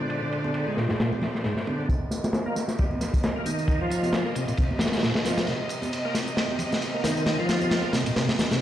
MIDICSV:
0, 0, Header, 1, 4, 480
1, 0, Start_track
1, 0, Key_signature, -3, "minor"
1, 0, Tempo, 447761
1, 110, Time_signature, 4, 2, 24, 8
1, 9235, End_track
2, 0, Start_track
2, 0, Title_t, "String section"
2, 0, Program_c, 0, 48
2, 0, Note_on_c, 0, 46, 81
2, 0, Note_on_c, 0, 56, 73
2, 0, Note_on_c, 0, 72, 73
2, 0, Note_on_c, 0, 74, 88
2, 1983, Note_off_c, 0, 46, 0
2, 1983, Note_off_c, 0, 56, 0
2, 1985, Note_off_c, 0, 72, 0
2, 1985, Note_off_c, 0, 74, 0
2, 2025, Note_on_c, 0, 75, 93
2, 2027, Note_on_c, 0, 48, 77
2, 2027, Note_on_c, 0, 58, 74
2, 5830, Note_off_c, 0, 58, 0
2, 5870, Note_on_c, 0, 60, 77
2, 9235, Note_off_c, 0, 48, 0
2, 9235, Note_off_c, 0, 60, 0
2, 9235, Note_off_c, 0, 75, 0
2, 9235, End_track
3, 0, Start_track
3, 0, Title_t, "Tonewheel organ"
3, 0, Program_c, 1, 16
3, 0, Note_on_c, 1, 50, 73
3, 231, Note_off_c, 1, 50, 0
3, 245, Note_on_c, 1, 50, 99
3, 711, Note_off_c, 1, 50, 0
3, 725, Note_on_c, 1, 56, 95
3, 825, Note_off_c, 1, 56, 0
3, 830, Note_on_c, 1, 46, 72
3, 933, Note_off_c, 1, 46, 0
3, 962, Note_on_c, 1, 44, 91
3, 1012, Note_off_c, 1, 44, 0
3, 1071, Note_on_c, 1, 46, 98
3, 1197, Note_off_c, 1, 46, 0
3, 1554, Note_on_c, 1, 44, 83
3, 1655, Note_off_c, 1, 44, 0
3, 1790, Note_on_c, 1, 50, 72
3, 2019, Note_off_c, 1, 50, 0
3, 2029, Note_on_c, 1, 48, 77
3, 2091, Note_off_c, 1, 48, 0
3, 2638, Note_on_c, 1, 58, 97
3, 2742, Note_off_c, 1, 58, 0
3, 2989, Note_on_c, 1, 55, 80
3, 3051, Note_off_c, 1, 55, 0
3, 3601, Note_on_c, 1, 58, 103
3, 3703, Note_off_c, 1, 58, 0
3, 3709, Note_on_c, 1, 51, 72
3, 4069, Note_off_c, 1, 51, 0
3, 4086, Note_on_c, 1, 53, 97
3, 4551, Note_off_c, 1, 53, 0
3, 4564, Note_on_c, 1, 58, 100
3, 4665, Note_off_c, 1, 58, 0
3, 4673, Note_on_c, 1, 48, 75
3, 4774, Note_off_c, 1, 48, 0
3, 4803, Note_on_c, 1, 46, 94
3, 4853, Note_off_c, 1, 46, 0
3, 4913, Note_on_c, 1, 48, 97
3, 5038, Note_off_c, 1, 48, 0
3, 5392, Note_on_c, 1, 46, 88
3, 5494, Note_off_c, 1, 46, 0
3, 5634, Note_on_c, 1, 53, 77
3, 5861, Note_off_c, 1, 53, 0
3, 5874, Note_on_c, 1, 48, 78
3, 5934, Note_off_c, 1, 48, 0
3, 6485, Note_on_c, 1, 58, 101
3, 6586, Note_off_c, 1, 58, 0
3, 6833, Note_on_c, 1, 55, 80
3, 6893, Note_off_c, 1, 55, 0
3, 7443, Note_on_c, 1, 58, 99
3, 7544, Note_off_c, 1, 58, 0
3, 7551, Note_on_c, 1, 51, 77
3, 7910, Note_off_c, 1, 51, 0
3, 7920, Note_on_c, 1, 53, 108
3, 8388, Note_off_c, 1, 53, 0
3, 8404, Note_on_c, 1, 58, 100
3, 8505, Note_off_c, 1, 58, 0
3, 8515, Note_on_c, 1, 48, 76
3, 8615, Note_off_c, 1, 48, 0
3, 8647, Note_on_c, 1, 46, 101
3, 8694, Note_off_c, 1, 46, 0
3, 8755, Note_on_c, 1, 48, 100
3, 8879, Note_off_c, 1, 48, 0
3, 9128, Note_on_c, 1, 48, 107
3, 9222, Note_off_c, 1, 48, 0
3, 9235, End_track
4, 0, Start_track
4, 0, Title_t, "Drums"
4, 104, Note_on_c, 9, 51, 78
4, 211, Note_off_c, 9, 51, 0
4, 348, Note_on_c, 9, 51, 70
4, 455, Note_off_c, 9, 51, 0
4, 475, Note_on_c, 9, 63, 80
4, 579, Note_on_c, 9, 51, 77
4, 583, Note_off_c, 9, 63, 0
4, 686, Note_off_c, 9, 51, 0
4, 825, Note_on_c, 9, 38, 40
4, 835, Note_on_c, 9, 51, 54
4, 932, Note_off_c, 9, 38, 0
4, 942, Note_off_c, 9, 51, 0
4, 952, Note_on_c, 9, 38, 46
4, 1060, Note_off_c, 9, 38, 0
4, 1070, Note_on_c, 9, 38, 102
4, 1071, Note_on_c, 9, 51, 73
4, 1177, Note_off_c, 9, 38, 0
4, 1178, Note_off_c, 9, 51, 0
4, 1204, Note_on_c, 9, 63, 57
4, 1303, Note_on_c, 9, 64, 80
4, 1310, Note_on_c, 9, 38, 38
4, 1312, Note_off_c, 9, 63, 0
4, 1313, Note_on_c, 9, 51, 65
4, 1410, Note_off_c, 9, 64, 0
4, 1417, Note_off_c, 9, 38, 0
4, 1420, Note_off_c, 9, 51, 0
4, 1445, Note_on_c, 9, 38, 33
4, 1544, Note_off_c, 9, 38, 0
4, 1544, Note_on_c, 9, 38, 39
4, 1544, Note_on_c, 9, 51, 57
4, 1651, Note_off_c, 9, 38, 0
4, 1651, Note_off_c, 9, 51, 0
4, 1680, Note_on_c, 9, 38, 35
4, 1787, Note_off_c, 9, 38, 0
4, 1790, Note_on_c, 9, 51, 70
4, 1794, Note_on_c, 9, 63, 85
4, 1897, Note_off_c, 9, 51, 0
4, 1901, Note_off_c, 9, 63, 0
4, 2027, Note_on_c, 9, 36, 95
4, 2030, Note_on_c, 9, 54, 31
4, 2031, Note_on_c, 9, 51, 79
4, 2134, Note_off_c, 9, 36, 0
4, 2137, Note_off_c, 9, 54, 0
4, 2138, Note_off_c, 9, 51, 0
4, 2262, Note_on_c, 9, 38, 40
4, 2263, Note_on_c, 9, 51, 62
4, 2267, Note_on_c, 9, 54, 77
4, 2369, Note_off_c, 9, 38, 0
4, 2370, Note_off_c, 9, 51, 0
4, 2375, Note_off_c, 9, 54, 0
4, 2401, Note_on_c, 9, 38, 50
4, 2402, Note_on_c, 9, 54, 40
4, 2403, Note_on_c, 9, 63, 88
4, 2498, Note_off_c, 9, 38, 0
4, 2498, Note_on_c, 9, 38, 105
4, 2509, Note_off_c, 9, 54, 0
4, 2510, Note_off_c, 9, 63, 0
4, 2510, Note_on_c, 9, 51, 86
4, 2512, Note_on_c, 9, 54, 32
4, 2605, Note_off_c, 9, 38, 0
4, 2618, Note_off_c, 9, 51, 0
4, 2619, Note_off_c, 9, 54, 0
4, 2746, Note_on_c, 9, 51, 61
4, 2748, Note_on_c, 9, 38, 39
4, 2748, Note_on_c, 9, 54, 77
4, 2854, Note_off_c, 9, 51, 0
4, 2855, Note_off_c, 9, 38, 0
4, 2855, Note_off_c, 9, 54, 0
4, 2873, Note_on_c, 9, 38, 45
4, 2879, Note_on_c, 9, 54, 45
4, 2980, Note_off_c, 9, 38, 0
4, 2985, Note_off_c, 9, 54, 0
4, 2985, Note_on_c, 9, 54, 31
4, 2989, Note_on_c, 9, 51, 87
4, 2993, Note_on_c, 9, 36, 105
4, 3092, Note_off_c, 9, 54, 0
4, 3096, Note_off_c, 9, 51, 0
4, 3100, Note_off_c, 9, 36, 0
4, 3118, Note_on_c, 9, 63, 55
4, 3224, Note_on_c, 9, 51, 68
4, 3225, Note_off_c, 9, 63, 0
4, 3227, Note_on_c, 9, 54, 70
4, 3228, Note_on_c, 9, 38, 40
4, 3231, Note_on_c, 9, 64, 84
4, 3331, Note_off_c, 9, 51, 0
4, 3334, Note_off_c, 9, 54, 0
4, 3335, Note_off_c, 9, 38, 0
4, 3338, Note_off_c, 9, 64, 0
4, 3362, Note_on_c, 9, 36, 90
4, 3363, Note_on_c, 9, 54, 41
4, 3467, Note_off_c, 9, 54, 0
4, 3467, Note_on_c, 9, 54, 32
4, 3468, Note_on_c, 9, 51, 76
4, 3469, Note_off_c, 9, 36, 0
4, 3471, Note_on_c, 9, 38, 115
4, 3574, Note_off_c, 9, 54, 0
4, 3575, Note_off_c, 9, 51, 0
4, 3578, Note_off_c, 9, 38, 0
4, 3706, Note_on_c, 9, 63, 93
4, 3708, Note_on_c, 9, 54, 76
4, 3710, Note_on_c, 9, 51, 60
4, 3814, Note_off_c, 9, 63, 0
4, 3815, Note_off_c, 9, 54, 0
4, 3817, Note_off_c, 9, 51, 0
4, 3844, Note_on_c, 9, 54, 44
4, 3941, Note_on_c, 9, 51, 97
4, 3944, Note_on_c, 9, 36, 115
4, 3950, Note_off_c, 9, 54, 0
4, 3950, Note_on_c, 9, 54, 32
4, 4048, Note_off_c, 9, 51, 0
4, 4051, Note_off_c, 9, 36, 0
4, 4058, Note_off_c, 9, 54, 0
4, 4183, Note_on_c, 9, 51, 62
4, 4195, Note_on_c, 9, 54, 74
4, 4290, Note_off_c, 9, 51, 0
4, 4302, Note_off_c, 9, 54, 0
4, 4321, Note_on_c, 9, 63, 85
4, 4327, Note_on_c, 9, 54, 43
4, 4423, Note_on_c, 9, 51, 78
4, 4424, Note_on_c, 9, 38, 117
4, 4429, Note_off_c, 9, 63, 0
4, 4433, Note_off_c, 9, 54, 0
4, 4433, Note_on_c, 9, 54, 33
4, 4530, Note_off_c, 9, 51, 0
4, 4532, Note_off_c, 9, 38, 0
4, 4540, Note_off_c, 9, 54, 0
4, 4665, Note_on_c, 9, 51, 72
4, 4672, Note_on_c, 9, 54, 77
4, 4772, Note_off_c, 9, 51, 0
4, 4780, Note_off_c, 9, 54, 0
4, 4801, Note_on_c, 9, 51, 42
4, 4806, Note_on_c, 9, 54, 46
4, 4902, Note_off_c, 9, 51, 0
4, 4902, Note_on_c, 9, 51, 83
4, 4913, Note_off_c, 9, 54, 0
4, 4913, Note_on_c, 9, 54, 32
4, 4914, Note_on_c, 9, 36, 115
4, 5009, Note_off_c, 9, 51, 0
4, 5020, Note_off_c, 9, 54, 0
4, 5022, Note_off_c, 9, 36, 0
4, 5047, Note_on_c, 9, 63, 67
4, 5136, Note_on_c, 9, 38, 95
4, 5140, Note_on_c, 9, 51, 71
4, 5148, Note_on_c, 9, 64, 81
4, 5154, Note_off_c, 9, 63, 0
4, 5156, Note_on_c, 9, 54, 78
4, 5207, Note_off_c, 9, 38, 0
4, 5207, Note_on_c, 9, 38, 98
4, 5208, Note_off_c, 9, 51, 0
4, 5208, Note_on_c, 9, 51, 73
4, 5255, Note_off_c, 9, 64, 0
4, 5263, Note_off_c, 9, 54, 0
4, 5274, Note_off_c, 9, 38, 0
4, 5274, Note_on_c, 9, 38, 92
4, 5285, Note_off_c, 9, 51, 0
4, 5285, Note_on_c, 9, 51, 70
4, 5286, Note_on_c, 9, 54, 43
4, 5326, Note_off_c, 9, 51, 0
4, 5326, Note_on_c, 9, 51, 62
4, 5335, Note_off_c, 9, 38, 0
4, 5335, Note_on_c, 9, 38, 86
4, 5384, Note_off_c, 9, 51, 0
4, 5384, Note_on_c, 9, 51, 67
4, 5390, Note_off_c, 9, 38, 0
4, 5390, Note_on_c, 9, 38, 103
4, 5392, Note_off_c, 9, 54, 0
4, 5392, Note_on_c, 9, 54, 32
4, 5491, Note_off_c, 9, 51, 0
4, 5498, Note_off_c, 9, 38, 0
4, 5499, Note_off_c, 9, 54, 0
4, 5508, Note_on_c, 9, 51, 83
4, 5524, Note_on_c, 9, 38, 100
4, 5615, Note_off_c, 9, 51, 0
4, 5622, Note_on_c, 9, 51, 79
4, 5628, Note_on_c, 9, 63, 87
4, 5629, Note_off_c, 9, 38, 0
4, 5629, Note_on_c, 9, 38, 88
4, 5633, Note_on_c, 9, 54, 76
4, 5729, Note_off_c, 9, 51, 0
4, 5735, Note_off_c, 9, 63, 0
4, 5736, Note_off_c, 9, 38, 0
4, 5740, Note_off_c, 9, 54, 0
4, 5763, Note_on_c, 9, 38, 111
4, 5763, Note_on_c, 9, 51, 77
4, 5765, Note_on_c, 9, 54, 45
4, 5863, Note_off_c, 9, 51, 0
4, 5863, Note_on_c, 9, 51, 97
4, 5870, Note_off_c, 9, 38, 0
4, 5872, Note_off_c, 9, 54, 0
4, 5874, Note_on_c, 9, 38, 48
4, 5874, Note_on_c, 9, 54, 32
4, 5970, Note_off_c, 9, 51, 0
4, 5981, Note_off_c, 9, 38, 0
4, 5981, Note_off_c, 9, 54, 0
4, 6101, Note_on_c, 9, 51, 68
4, 6113, Note_on_c, 9, 54, 76
4, 6208, Note_off_c, 9, 51, 0
4, 6220, Note_off_c, 9, 54, 0
4, 6241, Note_on_c, 9, 63, 101
4, 6250, Note_on_c, 9, 54, 43
4, 6349, Note_off_c, 9, 63, 0
4, 6354, Note_off_c, 9, 54, 0
4, 6354, Note_on_c, 9, 54, 33
4, 6355, Note_on_c, 9, 51, 87
4, 6461, Note_off_c, 9, 54, 0
4, 6463, Note_off_c, 9, 51, 0
4, 6588, Note_on_c, 9, 38, 56
4, 6592, Note_on_c, 9, 51, 69
4, 6593, Note_on_c, 9, 54, 78
4, 6695, Note_off_c, 9, 38, 0
4, 6699, Note_off_c, 9, 51, 0
4, 6700, Note_off_c, 9, 54, 0
4, 6726, Note_on_c, 9, 54, 45
4, 6828, Note_on_c, 9, 38, 69
4, 6833, Note_off_c, 9, 54, 0
4, 6833, Note_on_c, 9, 54, 33
4, 6841, Note_on_c, 9, 51, 98
4, 6935, Note_off_c, 9, 38, 0
4, 6940, Note_off_c, 9, 54, 0
4, 6948, Note_off_c, 9, 51, 0
4, 6952, Note_on_c, 9, 63, 69
4, 7058, Note_on_c, 9, 64, 79
4, 7060, Note_off_c, 9, 63, 0
4, 7062, Note_on_c, 9, 51, 73
4, 7074, Note_on_c, 9, 54, 71
4, 7166, Note_off_c, 9, 64, 0
4, 7169, Note_off_c, 9, 51, 0
4, 7181, Note_off_c, 9, 54, 0
4, 7207, Note_on_c, 9, 54, 43
4, 7211, Note_on_c, 9, 38, 55
4, 7309, Note_on_c, 9, 51, 85
4, 7314, Note_off_c, 9, 54, 0
4, 7314, Note_on_c, 9, 54, 32
4, 7318, Note_off_c, 9, 38, 0
4, 7416, Note_off_c, 9, 51, 0
4, 7421, Note_off_c, 9, 54, 0
4, 7545, Note_on_c, 9, 38, 66
4, 7545, Note_on_c, 9, 51, 70
4, 7552, Note_on_c, 9, 54, 79
4, 7553, Note_on_c, 9, 63, 91
4, 7652, Note_off_c, 9, 51, 0
4, 7653, Note_off_c, 9, 38, 0
4, 7659, Note_off_c, 9, 54, 0
4, 7660, Note_off_c, 9, 63, 0
4, 7687, Note_on_c, 9, 54, 42
4, 7785, Note_on_c, 9, 38, 77
4, 7787, Note_on_c, 9, 51, 86
4, 7791, Note_off_c, 9, 54, 0
4, 7791, Note_on_c, 9, 54, 31
4, 7892, Note_off_c, 9, 38, 0
4, 7894, Note_off_c, 9, 51, 0
4, 7898, Note_off_c, 9, 54, 0
4, 8028, Note_on_c, 9, 54, 78
4, 8032, Note_on_c, 9, 38, 79
4, 8036, Note_on_c, 9, 51, 69
4, 8135, Note_off_c, 9, 54, 0
4, 8139, Note_off_c, 9, 38, 0
4, 8143, Note_off_c, 9, 51, 0
4, 8163, Note_on_c, 9, 54, 39
4, 8163, Note_on_c, 9, 63, 94
4, 8266, Note_on_c, 9, 38, 88
4, 8268, Note_on_c, 9, 51, 95
4, 8269, Note_off_c, 9, 54, 0
4, 8269, Note_on_c, 9, 54, 31
4, 8270, Note_off_c, 9, 63, 0
4, 8373, Note_off_c, 9, 38, 0
4, 8375, Note_off_c, 9, 51, 0
4, 8376, Note_off_c, 9, 54, 0
4, 8502, Note_on_c, 9, 38, 83
4, 8502, Note_on_c, 9, 51, 71
4, 8510, Note_on_c, 9, 54, 74
4, 8609, Note_off_c, 9, 38, 0
4, 8610, Note_off_c, 9, 51, 0
4, 8617, Note_off_c, 9, 54, 0
4, 8642, Note_on_c, 9, 51, 87
4, 8646, Note_on_c, 9, 54, 43
4, 8749, Note_off_c, 9, 51, 0
4, 8750, Note_on_c, 9, 51, 76
4, 8751, Note_off_c, 9, 54, 0
4, 8751, Note_on_c, 9, 38, 98
4, 8751, Note_on_c, 9, 54, 32
4, 8857, Note_off_c, 9, 51, 0
4, 8858, Note_off_c, 9, 38, 0
4, 8859, Note_off_c, 9, 54, 0
4, 8886, Note_on_c, 9, 38, 77
4, 8887, Note_on_c, 9, 51, 81
4, 8889, Note_on_c, 9, 63, 70
4, 8993, Note_off_c, 9, 38, 0
4, 8993, Note_on_c, 9, 54, 73
4, 8994, Note_on_c, 9, 38, 102
4, 8995, Note_off_c, 9, 51, 0
4, 8996, Note_off_c, 9, 63, 0
4, 8997, Note_on_c, 9, 64, 77
4, 9101, Note_off_c, 9, 38, 0
4, 9101, Note_off_c, 9, 54, 0
4, 9104, Note_off_c, 9, 64, 0
4, 9126, Note_on_c, 9, 54, 41
4, 9127, Note_on_c, 9, 38, 86
4, 9234, Note_off_c, 9, 38, 0
4, 9234, Note_off_c, 9, 54, 0
4, 9235, End_track
0, 0, End_of_file